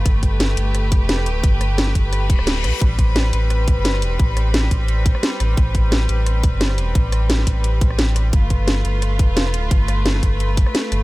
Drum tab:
HH |x-x-x-x-x-x-x-x-|x-x-x-x-x-x-x-x-|x-x-x-x-x-x-x-x-|x-x-x-x-x-x-x-x-|
SD |----o---r---or--|--r-oo--r--ro-r-|----o---r---or--|--r-oo-----ro-r-|
BD |o-o-------o-----|o-----o---o-----|o-o-------o-----|o-----o---o-----|

HH |x-x-x-x-x-x-x-x-|x-x-x-x-x-x-x-x-|x-x-x-x-x-x-x-x-|x-x-x-x-x-x-x-x-|
SD |----o---r---or--|--r-oo-----ro-r-|----o---r---or--|--r-oo-----ro-r-|
BD |o-o-------o-----|o-----o---o-----|o-o-------o-----|o-----o---o-----|